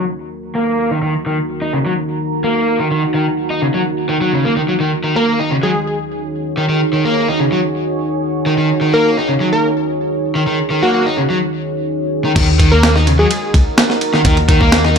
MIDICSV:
0, 0, Header, 1, 6, 480
1, 0, Start_track
1, 0, Key_signature, -6, "minor"
1, 0, Tempo, 472441
1, 1039, Time_signature, 4, 2, 24, 8
1, 15225, End_track
2, 0, Start_track
2, 0, Title_t, "Digital synth lead"
2, 0, Program_c, 0, 84
2, 5245, Note_on_c, 0, 70, 86
2, 5408, Note_off_c, 0, 70, 0
2, 5723, Note_on_c, 0, 68, 87
2, 6079, Note_off_c, 0, 68, 0
2, 9080, Note_on_c, 0, 70, 85
2, 9245, Note_off_c, 0, 70, 0
2, 9679, Note_on_c, 0, 70, 86
2, 9847, Note_off_c, 0, 70, 0
2, 10999, Note_on_c, 0, 66, 81
2, 11076, Note_off_c, 0, 66, 0
2, 11116, Note_on_c, 0, 66, 75
2, 11197, Note_off_c, 0, 66, 0
2, 12919, Note_on_c, 0, 70, 93
2, 13085, Note_off_c, 0, 70, 0
2, 13402, Note_on_c, 0, 68, 96
2, 13759, Note_off_c, 0, 68, 0
2, 15225, End_track
3, 0, Start_track
3, 0, Title_t, "Ambient pad"
3, 0, Program_c, 1, 92
3, 0, Note_on_c, 1, 51, 73
3, 0, Note_on_c, 1, 63, 67
3, 0, Note_on_c, 1, 66, 67
3, 0, Note_on_c, 1, 70, 68
3, 0, Note_on_c, 1, 82, 80
3, 4839, Note_off_c, 1, 70, 0
3, 4863, Note_off_c, 1, 82, 0
3, 4877, Note_on_c, 1, 73, 79
3, 4878, Note_on_c, 1, 68, 70
3, 12518, Note_off_c, 1, 51, 0
3, 12518, Note_off_c, 1, 63, 0
3, 12518, Note_off_c, 1, 68, 0
3, 12519, Note_off_c, 1, 66, 0
3, 12542, Note_off_c, 1, 73, 0
3, 12557, Note_on_c, 1, 63, 80
3, 12557, Note_on_c, 1, 66, 72
3, 12557, Note_on_c, 1, 70, 87
3, 15225, Note_off_c, 1, 63, 0
3, 15225, Note_off_c, 1, 66, 0
3, 15225, Note_off_c, 1, 70, 0
3, 15225, End_track
4, 0, Start_track
4, 0, Title_t, "Overdriven electric guitar"
4, 0, Program_c, 2, 29
4, 559, Note_on_c, 2, 58, 88
4, 910, Note_off_c, 2, 58, 0
4, 927, Note_on_c, 2, 51, 70
4, 996, Note_off_c, 2, 51, 0
4, 1038, Note_on_c, 2, 51, 73
4, 1152, Note_off_c, 2, 51, 0
4, 1284, Note_on_c, 2, 51, 69
4, 1395, Note_off_c, 2, 51, 0
4, 1642, Note_on_c, 2, 63, 70
4, 1747, Note_off_c, 2, 63, 0
4, 1761, Note_on_c, 2, 49, 64
4, 1805, Note_off_c, 2, 49, 0
4, 1887, Note_on_c, 2, 54, 71
4, 1956, Note_off_c, 2, 54, 0
4, 2480, Note_on_c, 2, 58, 89
4, 2830, Note_off_c, 2, 58, 0
4, 2843, Note_on_c, 2, 51, 70
4, 2914, Note_off_c, 2, 51, 0
4, 2957, Note_on_c, 2, 51, 73
4, 3072, Note_off_c, 2, 51, 0
4, 3194, Note_on_c, 2, 51, 67
4, 3310, Note_off_c, 2, 51, 0
4, 3559, Note_on_c, 2, 63, 69
4, 3666, Note_off_c, 2, 63, 0
4, 3677, Note_on_c, 2, 49, 63
4, 3724, Note_off_c, 2, 49, 0
4, 3802, Note_on_c, 2, 54, 68
4, 3874, Note_off_c, 2, 54, 0
4, 4156, Note_on_c, 2, 51, 91
4, 4233, Note_off_c, 2, 51, 0
4, 4279, Note_on_c, 2, 54, 84
4, 4386, Note_off_c, 2, 54, 0
4, 4398, Note_on_c, 2, 49, 72
4, 4510, Note_off_c, 2, 49, 0
4, 4522, Note_on_c, 2, 58, 64
4, 4594, Note_off_c, 2, 58, 0
4, 4637, Note_on_c, 2, 51, 83
4, 4683, Note_off_c, 2, 51, 0
4, 4760, Note_on_c, 2, 54, 68
4, 4804, Note_off_c, 2, 54, 0
4, 4878, Note_on_c, 2, 51, 72
4, 4992, Note_off_c, 2, 51, 0
4, 5117, Note_on_c, 2, 51, 68
4, 5232, Note_off_c, 2, 51, 0
4, 5240, Note_on_c, 2, 58, 91
4, 5469, Note_off_c, 2, 58, 0
4, 5481, Note_on_c, 2, 63, 68
4, 5586, Note_off_c, 2, 63, 0
4, 5599, Note_on_c, 2, 49, 65
4, 5644, Note_off_c, 2, 49, 0
4, 5721, Note_on_c, 2, 54, 72
4, 5793, Note_off_c, 2, 54, 0
4, 6679, Note_on_c, 2, 51, 70
4, 6752, Note_off_c, 2, 51, 0
4, 6797, Note_on_c, 2, 51, 74
4, 6912, Note_off_c, 2, 51, 0
4, 7041, Note_on_c, 2, 51, 70
4, 7153, Note_off_c, 2, 51, 0
4, 7162, Note_on_c, 2, 58, 96
4, 7390, Note_off_c, 2, 58, 0
4, 7402, Note_on_c, 2, 63, 69
4, 7507, Note_off_c, 2, 63, 0
4, 7517, Note_on_c, 2, 49, 66
4, 7564, Note_off_c, 2, 49, 0
4, 7642, Note_on_c, 2, 54, 73
4, 7714, Note_off_c, 2, 54, 0
4, 8598, Note_on_c, 2, 51, 71
4, 8672, Note_off_c, 2, 51, 0
4, 8715, Note_on_c, 2, 51, 73
4, 8831, Note_off_c, 2, 51, 0
4, 8954, Note_on_c, 2, 51, 70
4, 9070, Note_off_c, 2, 51, 0
4, 9077, Note_on_c, 2, 58, 93
4, 9307, Note_off_c, 2, 58, 0
4, 9319, Note_on_c, 2, 63, 71
4, 9426, Note_off_c, 2, 63, 0
4, 9436, Note_on_c, 2, 49, 65
4, 9483, Note_off_c, 2, 49, 0
4, 9556, Note_on_c, 2, 54, 70
4, 9631, Note_off_c, 2, 54, 0
4, 10519, Note_on_c, 2, 51, 71
4, 10592, Note_off_c, 2, 51, 0
4, 10635, Note_on_c, 2, 51, 75
4, 10751, Note_off_c, 2, 51, 0
4, 10874, Note_on_c, 2, 51, 70
4, 10990, Note_off_c, 2, 51, 0
4, 10999, Note_on_c, 2, 58, 97
4, 11228, Note_off_c, 2, 58, 0
4, 11238, Note_on_c, 2, 63, 72
4, 11345, Note_off_c, 2, 63, 0
4, 11355, Note_on_c, 2, 49, 67
4, 11402, Note_off_c, 2, 49, 0
4, 11480, Note_on_c, 2, 54, 73
4, 11553, Note_off_c, 2, 54, 0
4, 12443, Note_on_c, 2, 51, 73
4, 12514, Note_off_c, 2, 51, 0
4, 12560, Note_on_c, 2, 51, 82
4, 12673, Note_off_c, 2, 51, 0
4, 12797, Note_on_c, 2, 51, 79
4, 12912, Note_off_c, 2, 51, 0
4, 12923, Note_on_c, 2, 58, 102
4, 13151, Note_off_c, 2, 58, 0
4, 13163, Note_on_c, 2, 63, 77
4, 13268, Note_off_c, 2, 63, 0
4, 13280, Note_on_c, 2, 49, 74
4, 13325, Note_off_c, 2, 49, 0
4, 13404, Note_on_c, 2, 54, 78
4, 13475, Note_off_c, 2, 54, 0
4, 14365, Note_on_c, 2, 51, 78
4, 14435, Note_off_c, 2, 51, 0
4, 14481, Note_on_c, 2, 51, 83
4, 14594, Note_off_c, 2, 51, 0
4, 14722, Note_on_c, 2, 51, 80
4, 14834, Note_off_c, 2, 51, 0
4, 14843, Note_on_c, 2, 58, 107
4, 15071, Note_off_c, 2, 58, 0
4, 15084, Note_on_c, 2, 63, 76
4, 15188, Note_off_c, 2, 63, 0
4, 15225, End_track
5, 0, Start_track
5, 0, Title_t, "Upright bass"
5, 0, Program_c, 3, 32
5, 12557, Note_on_c, 3, 39, 97
5, 13451, Note_off_c, 3, 39, 0
5, 13758, Note_on_c, 3, 37, 77
5, 13838, Note_off_c, 3, 37, 0
5, 14475, Note_on_c, 3, 39, 99
5, 15225, Note_off_c, 3, 39, 0
5, 15225, End_track
6, 0, Start_track
6, 0, Title_t, "Drums"
6, 12557, Note_on_c, 9, 36, 107
6, 12558, Note_on_c, 9, 49, 89
6, 12558, Note_on_c, 9, 51, 86
6, 12658, Note_off_c, 9, 36, 0
6, 12659, Note_off_c, 9, 49, 0
6, 12659, Note_off_c, 9, 51, 0
6, 12797, Note_on_c, 9, 36, 97
6, 12797, Note_on_c, 9, 51, 70
6, 12898, Note_off_c, 9, 51, 0
6, 12899, Note_off_c, 9, 36, 0
6, 13038, Note_on_c, 9, 38, 118
6, 13038, Note_on_c, 9, 51, 89
6, 13140, Note_off_c, 9, 38, 0
6, 13140, Note_off_c, 9, 51, 0
6, 13164, Note_on_c, 9, 38, 39
6, 13265, Note_off_c, 9, 38, 0
6, 13280, Note_on_c, 9, 51, 68
6, 13382, Note_off_c, 9, 51, 0
6, 13519, Note_on_c, 9, 51, 88
6, 13621, Note_off_c, 9, 51, 0
6, 13758, Note_on_c, 9, 36, 92
6, 13758, Note_on_c, 9, 51, 69
6, 13859, Note_off_c, 9, 36, 0
6, 13860, Note_off_c, 9, 51, 0
6, 13998, Note_on_c, 9, 38, 119
6, 13998, Note_on_c, 9, 51, 90
6, 14099, Note_off_c, 9, 38, 0
6, 14099, Note_off_c, 9, 51, 0
6, 14120, Note_on_c, 9, 38, 38
6, 14222, Note_off_c, 9, 38, 0
6, 14237, Note_on_c, 9, 51, 67
6, 14339, Note_off_c, 9, 51, 0
6, 14361, Note_on_c, 9, 38, 37
6, 14462, Note_off_c, 9, 38, 0
6, 14476, Note_on_c, 9, 51, 86
6, 14477, Note_on_c, 9, 36, 107
6, 14578, Note_off_c, 9, 51, 0
6, 14579, Note_off_c, 9, 36, 0
6, 14601, Note_on_c, 9, 51, 43
6, 14702, Note_off_c, 9, 51, 0
6, 14717, Note_on_c, 9, 51, 67
6, 14718, Note_on_c, 9, 36, 98
6, 14819, Note_off_c, 9, 36, 0
6, 14819, Note_off_c, 9, 51, 0
6, 14842, Note_on_c, 9, 36, 95
6, 14943, Note_off_c, 9, 36, 0
6, 14958, Note_on_c, 9, 38, 121
6, 14958, Note_on_c, 9, 51, 92
6, 15060, Note_off_c, 9, 38, 0
6, 15060, Note_off_c, 9, 51, 0
6, 15083, Note_on_c, 9, 38, 43
6, 15184, Note_off_c, 9, 38, 0
6, 15225, End_track
0, 0, End_of_file